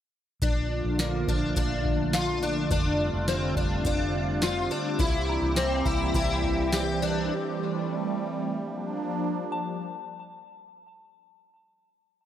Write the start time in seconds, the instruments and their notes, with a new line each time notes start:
0.42 fingered electric bass A#1, analog synth pad D3 F3 A3 A#3 F4, twelve-string acoustic guitar D4, kick, closed hi-hat
0.84 fingered electric bass A#1
0.99 twelve-string acoustic guitar A#3, snare, closed hi-hat
1.28 fingered electric bass A#1, twelve-string acoustic guitar D4, kick
1.56 fingered electric bass A#1, twelve-string acoustic guitar D4, kick, closed hi-hat
1.85 kick
2.13 twelve-string acoustic guitar F4, snare, closed hi-hat
2.43 twelve-string acoustic guitar D4
2.71 fingered electric bass F1, analog synth pad G3 C4 F4, twelve-string acoustic guitar D4, kick, closed hi-hat
3.14 fingered electric bass F1
3.28 twelve-string acoustic guitar C4, snare, closed hi-hat
3.56 fingered electric bass F1, twelve-string acoustic guitar D4, kick
3.85 fingered electric bass F1, twelve-string acoustic guitar D4, kick, closed hi-hat
4.42 twelve-string acoustic guitar F4, snare, closed hi-hat
4.71 twelve-string acoustic guitar D4
4.99 fingered electric bass C2, analog synth pad E3 A#3 G4, twelve-string acoustic guitar E4, kick, closed hi-hat
5.29 synth bell A#5
5.42 fingered electric bass C2
5.56 twelve-string acoustic guitar C4, snare, closed hi-hat
5.85 fingered electric bass C2, twelve-string acoustic guitar E4, kick
6.14 fingered electric bass C2, twelve-string acoustic guitar E4, kick, closed hi-hat
6.43 kick
6.72 twelve-string acoustic guitar G4, snare, closed hi-hat
7.02 twelve-string acoustic guitar D4
7.32 analog synth pad G3 A3
8.56 analog synth pad F3 A#3 D4
9.52 synth bell A5